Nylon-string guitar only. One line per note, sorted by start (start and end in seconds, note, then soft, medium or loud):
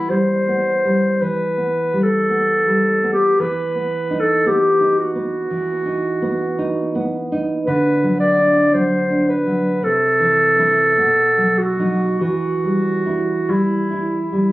0.00 1.17 E3 soft
0.00 0.34 B3 soft
0.10 0.70 G3 soft
0.48 1.07 B3 soft
0.85 1.43 G3 soft
1.22 3.35 E3 soft
1.57 2.15 B3 soft
1.93 2.51 G3 soft
2.30 2.88 B3 soft
2.66 3.25 G3 soft
3.03 3.39 B3 soft
3.39 5.46 E3 soft
3.75 4.32 B3 soft
4.11 4.67 D#4 soft
4.46 5.02 B3 soft
4.80 5.36 D#4 soft
5.15 5.71 B3 soft
5.51 7.63 E3 soft
5.85 6.43 D#4 soft
6.22 6.80 B3 soft
6.59 7.16 D#4 soft
6.95 7.52 B3 soft
7.32 7.67 D#4 soft
7.67 9.79 D3 soft
8.04 8.60 F#3 soft
8.39 8.96 D4 soft
8.74 9.32 F#3 soft
9.10 9.68 D4 soft
9.46 9.82 F#3 soft
9.83 10.93 C3 soft
10.20 10.57 E3 soft
10.59 10.93 E3 soft
10.59 10.93 E4 soft
10.98 12.17 B2 soft
11.38 11.78 F#3 soft
11.79 12.17 F#3 soft
11.79 12.17 D#4 soft
12.21 14.52 E3 soft
12.64 13.32 G3 soft
13.06 13.74 E4 soft
13.49 14.16 G3 soft
13.91 14.52 E4 soft
14.32 14.52 G3 soft